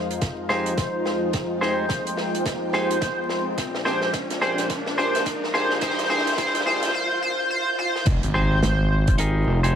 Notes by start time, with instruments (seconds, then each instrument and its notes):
Already playing: analog synth pad F2 F3 G#3 D#4, ambient pad F4 C5 F5 C6, analog synth lead C5, riser
0.11 closed hi-hat
0.21 kick, snare, closed hi-hat
0.49 clean electric guitar D#4 G4 G#4 C5, analog synth lead C5, snare
0.66 closed hi-hat
0.75 ambient pad G5, kick, snare, closed hi-hat
1.06 snare
1.33 kick, snare, closed hi-hat
1.61 clean electric guitar D#4 G4 G#4 C5, analog synth lead C5, snare
1.89 kick, snare, closed hi-hat
2.07 closed hi-hat
2.17 snare
2.35 closed hi-hat
2.46 kick, snare, closed hi-hat
2.73 clean electric guitar D#4 G4 G#4 C5, analog synth lead C5, snare
2.91 closed hi-hat
3.01 kick, snare, closed hi-hat
3.29 snare
3.57 analog synth pad A#2 F3 D4, ambient pad A#4, kick, snare, closed hi-hat
3.74 snare
3.85 clean electric guitar D4 G4 G#4 C5, analog synth lead C5, snare
4.01 snare
4.13 kick, snare, closed hi-hat
4.28 ambient pad F5, snare, closed hi-hat
4.41 clean electric guitar D4 G4 G#4 C5, analog synth lead C5, snare
4.58 snare, closed hi-hat
4.70 kick, snare, closed hi-hat
4.86 snare
4.98 clean electric guitar D4 G4 G#4 C5, analog synth lead C5, snare
5.15 ambient pad C6, snare, closed hi-hat
5.26 kick, snare, closed hi-hat
5.44 snare
5.54 clean electric guitar D4 G4 G#4 C5, analog synth lead C5, snare
5.71 snare
5.81 clean electric guitar D4 G4 G#4 C5, analog synth lead C5, kick, snare, closed hi-hat
5.90 snare
5.99 snare, closed hi-hat
6.05 snare
6.10 clean electric guitar D4 G4 G#4 C5, analog synth lead C5, snare
6.18 snare
6.27 snare, closed hi-hat
6.32 snare
6.38 clean electric guitar D4 G4 G#4 C5, analog synth lead C5, kick, snare, closed hi-hat
6.46 snare
6.55 snare, closed hi-hat
6.61 snare
6.66 clean electric guitar D4 G4 G#4 C5, analog synth lead C5, snare
6.82 snare, closed hi-hat
6.88 snare
6.94 analog synth lead C5, swell
7.22 analog synth lead C5
7.50 analog synth lead C5
7.79 analog synth lead C5, high tom
7.96 snare
8.06 analog synth bass F1, ambient pad F4, kick, closed hi-hat, crash, impact
8.23 analog synth bass G#1, closed hi-hat
8.34 clean electric guitar D#4 G4 G#4 C5, analog synth lead C5
8.41 ambient pad C5
8.62 analog synth bass G#1, snare, closed hi-hat
9.07 kick, cross-stick, closed hi-hat
9.18 clean electric guitar D#4 G4 G#4 A#4, closed hi-hat
9.47 analog synth bass F1
9.63 clean electric guitar D#4 G4 G#4 C5, closed hi-hat
9.72 ambient pad G5